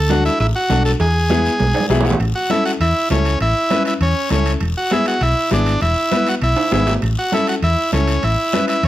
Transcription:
Already playing: fingered electric bass D2, transistor combo organ A4
0.09 upright piano D4 F#4 A4, transistor combo organ F#4, cowbell, high conga, short guiro
0.25 transistor combo organ E4, short guiro
0.39 fingered electric bass A1, transistor combo organ E4, cowbell, high conga, long guiro
0.56 transistor combo organ F#4
0.70 fingered electric bass B1, upright piano D4 F#4 A4, cowbell, high conga, short guiro
0.85 transistor combo organ A4, short guiro
1.00 fingered electric bass E2, transistor combo organ G#4, cowbell, high conga, long guiro
1.30 upright piano B3 E4 G#4, cowbell, high conga, short guiro
1.45 short guiro
1.60 fingered electric bass B1, cowbell, high conga, long guiro
1.74 upright piano D5, high timbale
1.80 high conga
1.90 fingered electric bass B1, upright piano B3 E4 G#4 E5, cowbell, low conga, short guiro
1.95 low timbale
2.01 low conga
2.05 upright piano F#5, low timbale, short guiro
2.10 low conga
2.20 fingered electric bass A1, high conga, high timbale, long guiro
2.35 transistor combo organ F#4
2.50 upright piano C#4 E4 A4, transistor combo organ E4, high conga, high timbale, short guiro
2.65 transistor combo organ F#4, high timbale, short guiro
2.80 fingered electric bass E2, transistor combo organ E4, high conga, high timbale, long guiro
3.10 fingered electric bass C#2, upright piano C#4 E4 A4, transistor combo organ C#4, high conga, high timbale, low timbale, short guiro
3.25 high timbale, short guiro
3.40 fingered electric bass A1, transistor combo organ E4, high conga, high timbale, long guiro
3.70 upright piano C#4 E4 B4, high conga, high timbale, short guiro
3.85 transistor combo organ E4, high timbale, short guiro
4.00 fingered electric bass E2, transistor combo organ C#4, high conga, high timbale, long guiro
4.30 fingered electric bass C#2, upright piano C#4 E4 A4, transistor combo organ C#4, high conga, high timbale, short guiro
4.46 high timbale, short guiro
4.60 fingered electric bass E1, high conga, high timbale, long guiro
4.77 transistor combo organ F#4
4.91 upright piano B3 E4 G#4, transistor combo organ E4, high conga, high timbale, short guiro
5.06 transistor combo organ F#4, high timbale, short guiro
5.21 fingered electric bass B1, transistor combo organ E4, high conga, high timbale, long guiro
5.51 fingered electric bass G#1, upright piano B3 E4 G#4, transistor combo organ D4, high conga, high timbale, short guiro
5.66 high timbale, short guiro
5.81 fingered electric bass E1, transistor combo organ E4, high conga, high timbale, long guiro
6.11 upright piano B3 E4 B4, high conga, high timbale, short guiro
6.27 transistor combo organ F#4, high timbale, short guiro
6.42 fingered electric bass B1, transistor combo organ E4, high conga, high timbale, long guiro
6.57 high timbale
6.71 fingered electric bass G#1, upright piano B3 E4 G#4, transistor combo organ E4, high conga, high timbale, short guiro
6.87 low timbale, short guiro
7.02 fingered electric bass A1, high conga, high timbale, long guiro
7.19 transistor combo organ F#4
7.32 upright piano C#4 E4 A4, transistor combo organ E4, high conga, high timbale, short guiro
7.47 transistor combo organ F#4, high timbale, short guiro
7.62 fingered electric bass E2, transistor combo organ E4, high conga, high timbale, long guiro
7.92 fingered electric bass C#2, upright piano C#4 E4 A4, transistor combo organ C#4, high conga, high timbale, short guiro
8.07 high timbale, short guiro
8.23 fingered electric bass A1, transistor combo organ E4, high conga, high timbale, long guiro
8.53 upright piano C#4 E4 B4, high conga, high timbale, short guiro
8.68 transistor combo organ E4, high timbale, short guiro
8.83 fingered electric bass E2, high conga, high timbale, long guiro

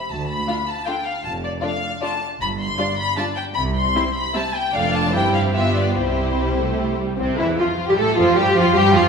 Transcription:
0.09 double bass section D2, cello section D2, violin section A5
0.28 violin section B5
0.47 viola section A3 D4, violin section F4 F5
0.68 violin section A5
0.86 viola section A3 D4, violin section F4 F5 G5
1.05 violin section F5
1.24 double bass section F1, cello section F2, violin section A5
1.44 violin section D5
1.61 viola section A3 D4, violin section F4 D5 F5
2.02 viola section A3 D4, violin section F4 D5 A5
2.40 double bass section G1, cello section G2, violin section B5
2.59 violin section C6
2.77 viola section G3 D4, violin section F4 D5
2.98 violin section B5
3.16 viola section G3 D4, violin section F4 D5 A5
3.36 violin section G5
3.54 double bass section C2, cello section C3, violin section B5
3.75 violin section C6
3.95 viola section G3 C4, violin section E4 E5
4.14 violin section B5
4.33 viola section G3 C4, violin section E4 E5 A5
4.56 violin section G5
4.73 double bass section F1, cello section F2, viola section A3 D4, violin section F4 D5 F5
4.94 violin section A5
5.14 double bass section G1, cello section G2, viola section G3 C4, violin section E4 G4 G5
5.34 violin section F5
5.53 double bass section G1, cello section G2, viola section G3 B3, violin section F4 G4 E5
5.76 violin section D5
5.95 double bass section C2, cello section C3, viola section G3 C4, violin section E4 G4 C5
6.36 viola section G3
6.57 viola section A3
6.99 viola section G3
7.18 double bass section C2, viola section C3, violin section C4, cello section C4
7.38 double bass section E2, viola section E3, violin section E4, cello section E4
7.57 double bass section F2, viola section F3, violin section F4, cello section F4
7.88 double bass section G2, viola section G3, violin section G4, cello section G4
7.98 double bass section A2, viola section A3, violin section A4, cello section A4
8.16 double bass section F2, viola section F3, violin section F4, cello section F4
8.35 double bass section G2, viola section G3, violin section G4, cello section G4
8.55 double bass section F2, viola section F3, violin section F4, cello section F4
8.74 double bass section G2, viola section G3, violin section G4, cello section G4
8.95 double bass section F2, viola section F3, cello section F4, violin section F4

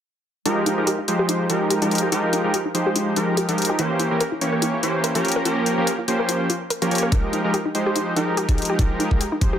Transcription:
0.46 supersaw synth F3 G#3 D#4 G4 A#4, synth arpeggio sound D#4, closed hi-hat
0.66 synth arpeggio sound D#4, closed hi-hat
0.78 supersaw synth F3 G#3 D#4 G4 A#4
0.87 synth arpeggio sound G4, closed hi-hat
0.99 synth arpeggio sound D#4
1.08 supersaw synth F3 G#3 D#4 G4 C5, closed hi-hat
1.19 synth arpeggio sound G4
1.29 synth arpeggio sound D#4, closed hi-hat
1.50 supersaw synth F3 G#3 D#4 G4 A#4, synth arpeggio sound D#4, closed hi-hat
1.70 synth arpeggio sound G4, closed hi-hat
1.82 supersaw synth F3 G#3 D#4 G4 A#4, synth arpeggio sound D#4, closed hi-hat
1.91 closed hi-hat
1.95 closed hi-hat
1.98 closed hi-hat
2.03 synth arpeggio sound G4
2.12 supersaw synth F3 G#3 D#4 G4 A#4, synth arpeggio sound D#4, closed hi-hat
2.33 synth arpeggio sound D#4, closed hi-hat
2.44 supersaw synth F3 G#3 D#4 G4 A#4
2.54 synth arpeggio sound G4, closed hi-hat
2.65 synth arpeggio sound D#4
2.75 supersaw synth F3 G#3 D#4 G4 C5, closed hi-hat
2.86 synth arpeggio sound G4
2.96 synth arpeggio sound D#4, closed hi-hat
3.16 supersaw synth F3 G#3 D#4 G4 A#4, synth arpeggio sound D#4, closed hi-hat
3.37 synth arpeggio sound G4, closed hi-hat
3.49 supersaw synth F3 G#3 D#4 G4 A#4, synth arpeggio sound D#4, closed hi-hat
3.58 closed hi-hat
3.62 closed hi-hat
3.65 closed hi-hat
3.70 synth arpeggio sound G4
3.79 supersaw synth E3 A#3 C#4 G4 C5, synth arpeggio sound E4, closed hi-hat
4.00 synth arpeggio sound E4, closed hi-hat
4.11 supersaw synth E3 A#3 C#4 G4 A#4
4.21 synth arpeggio sound A#4, closed hi-hat
4.32 synth arpeggio sound E4
4.41 supersaw synth E3 A#3 C#4 G4 C#5, closed hi-hat
4.53 synth arpeggio sound A#4
4.62 synth arpeggio sound E4, closed hi-hat
4.83 supersaw synth E3 A#3 C#4 G4 C5, synth arpeggio sound E4, closed hi-hat
5.04 synth arpeggio sound A#4, closed hi-hat
5.15 supersaw synth F3 A#3 C#4 G4 A#4, synth arpeggio sound E4, closed hi-hat
5.25 closed hi-hat
5.28 closed hi-hat
5.32 closed hi-hat
5.36 synth arpeggio sound A#4
5.45 supersaw synth F3 A#3 C#4 G4 A#4, synth arpeggio sound F4, closed hi-hat
5.66 synth arpeggio sound F4, closed hi-hat
5.78 supersaw synth F3 A#3 C#4 G4 A#4
5.87 synth arpeggio sound A#4, closed hi-hat
5.99 synth arpeggio sound F4
6.08 supersaw synth F3 A#3 C#4 G4 C5, closed hi-hat
6.19 synth arpeggio sound A#4
6.29 synth arpeggio sound F4, closed hi-hat
6.50 synth arpeggio sound F4, closed hi-hat
6.70 synth arpeggio sound A#4, closed hi-hat
6.82 supersaw synth F3 A#3 C#4 G4 A#4, synth arpeggio sound F4, closed hi-hat
6.91 supersaw synth F3 A#3 C#4 G4 C#5, closed hi-hat
6.95 closed hi-hat
6.98 closed hi-hat
7.03 synth arpeggio sound A#4
7.12 supersaw synth F3 G#3 D#4 G4 A#4, synth arpeggio sound D#4, kick, closed hi-hat
7.33 synth arpeggio sound D#4, closed hi-hat
7.44 supersaw synth F3 G#3 D#4 G4 A#4
7.54 synth arpeggio sound G4, closed hi-hat
7.65 synth arpeggio sound D#4
7.75 supersaw synth F3 G#3 D#4 G4 C5, closed hi-hat
7.86 synth arpeggio sound G4
7.96 synth arpeggio sound D#4, closed hi-hat
8.16 supersaw synth F3 G#3 D#4 G4 A#4, synth arpeggio sound D#4, closed hi-hat
8.37 synth arpeggio sound G4, closed hi-hat
8.49 supersaw synth F3 G#3 D#4 G4 A#4, synth arpeggio sound D#4, kick, closed hi-hat
8.58 closed hi-hat
8.62 closed hi-hat
8.65 closed hi-hat
8.70 synth arpeggio sound G4
8.79 supersaw synth F3 G#3 G4, synth arpeggio sound D#4, kick, closed hi-hat
9.00 synth arpeggio sound D#4, closed hi-hat
9.11 supersaw synth F3 G#3 D#4 G4 A#4, kick
9.21 synth arpeggio sound G4, closed hi-hat
9.32 synth arpeggio sound D#4
9.41 supersaw synth F3 G#3 D#4 G4 C5, kick, closed hi-hat
9.53 synth arpeggio sound G4

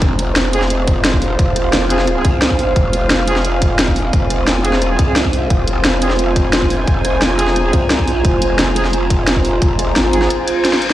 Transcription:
0.02 wobble bass F1, analog synth pad F4 C5 F5, ambient pad F4, kick, closed hi-hat
0.14 ambient pad C5
0.19 closed hi-hat
0.36 snare, closed hi-hat
0.45 cross-stick
0.53 brass ensemble C4 F4 G#4, closed hi-hat
0.62 snare
0.70 ambient pad G#5, closed hi-hat
0.88 kick, closed hi-hat
1.05 snare, closed hi-hat
1.13 kick
1.22 open hi-hat
1.39 wobble bass F1, kick, closed hi-hat
1.56 cross-stick, closed hi-hat
1.73 wobble bass F1, snare, closed hi-hat
1.82 cross-stick
1.90 brass ensemble C4 F4 G#4, closed hi-hat
1.99 snare
2.07 cross-stick, closed hi-hat
2.16 brass ensemble C4 F4 G#4
2.25 wobble bass C2, kick, closed hi-hat
2.42 snare, closed hi-hat
2.50 kick
2.59 open hi-hat
2.76 wobble bass F1, kick, closed hi-hat
2.93 closed hi-hat
3.10 snare, closed hi-hat
3.19 cross-stick
3.27 brass ensemble C4 F4 G#4, closed hi-hat
3.36 snare
3.45 closed hi-hat
3.62 kick, closed hi-hat
3.79 snare, closed hi-hat
3.87 kick
3.96 open hi-hat
4.13 wobble bass F1, kick, closed hi-hat
4.30 cross-stick, closed hi-hat
4.47 wobble bass F1, snare, closed hi-hat
4.56 cross-stick
4.65 brass ensemble C4 F4 G#4, closed hi-hat
4.73 snare
4.82 cross-stick, closed hi-hat
4.90 brass ensemble C4 F4 G#4
4.99 wobble bass C2, kick, closed hi-hat
5.08 brass ensemble C4 F4 G#4
5.16 snare, closed hi-hat
5.25 kick
5.33 open hi-hat
5.50 wobble bass F1, analog synth pad G#5, kick, closed hi-hat
5.68 closed hi-hat
5.85 snare, closed hi-hat
5.93 cross-stick
6.02 brass ensemble C4 F4 G#4, closed hi-hat
6.10 snare
6.19 ambient pad A#5, closed hi-hat
6.36 kick, closed hi-hat
6.53 snare, closed hi-hat
6.62 kick
6.70 open hi-hat
6.88 wobble bass F1, kick, closed hi-hat
7.05 cross-stick, closed hi-hat
7.22 wobble bass F1, snare, closed hi-hat
7.30 cross-stick
7.39 brass ensemble C4 F4 G#4, closed hi-hat
7.47 snare
7.56 cross-stick, closed hi-hat
7.65 brass ensemble C4 F4 G#4
7.73 wobble bass C2, kick, closed hi-hat
7.90 snare, closed hi-hat
7.99 kick
8.08 open hi-hat
8.25 wobble bass F1, kick, closed hi-hat
8.42 closed hi-hat
8.59 snare, closed hi-hat
8.68 cross-stick
8.76 brass ensemble C4 F4 G#4, closed hi-hat
8.85 snare
8.93 closed hi-hat
9.10 kick, closed hi-hat
9.28 snare, closed hi-hat
9.36 kick
9.45 open hi-hat
9.62 wobble bass F1, kick, closed hi-hat
9.79 cross-stick, closed hi-hat
9.96 wobble bass G#1, snare, closed hi-hat
10.05 cross-stick
10.13 brass ensemble C4 F4 G#4, closed hi-hat
10.22 snare
10.30 cross-stick, closed hi-hat, reverse cymbal
10.48 closed hi-hat
10.65 snare, closed hi-hat
10.73 snare
10.82 open hi-hat

